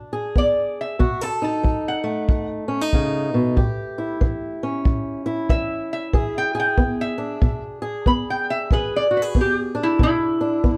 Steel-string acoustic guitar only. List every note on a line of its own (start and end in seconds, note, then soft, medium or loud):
0.00 0.32 B2 medium
0.00 0.98 D4 medium
0.13 0.98 G#4 medium
0.36 0.95 B3 medium
0.99 1.59 B2 medium
0.99 1.21 F#4 medium
1.21 3.57 A4 medium
1.42 2.68 D#4 medium
1.63 2.23 F#3 medium
2.04 4.61 A3 medium
2.29 2.88 F#2 medium
2.68 2.81 C#4 medium
2.81 3.57 D#4 soft
2.94 3.33 C#3 medium
3.34 3.58 B2 medium
3.56 4.16 A2 medium
3.56 6.11 G4 medium
3.98 5.25 E4 medium
4.21 4.80 E3 medium
4.63 6.12 C#4 medium
4.85 5.45 A2 medium
5.26 7.17 E4 medium
5.50 6.09 E3 medium
6.13 6.73 E3 medium
6.13 6.54 G#4 medium
6.55 7.81 G#4 medium
6.78 7.37 B3 medium
7.18 8.75 D4 medium
7.41 8.01 B2 medium
7.82 8.72 G#4 medium
8.06 8.66 B3 medium
8.72 9.31 E3 medium
8.72 9.10 G#4 medium
9.11 9.22 F#4 medium
9.22 10.77 G#4 medium
9.35 9.95 B3 medium
9.75 10.39 D4 medium
10.00 10.59 B2 medium
10.41 10.77 D4 medium
10.64 10.77 B3 medium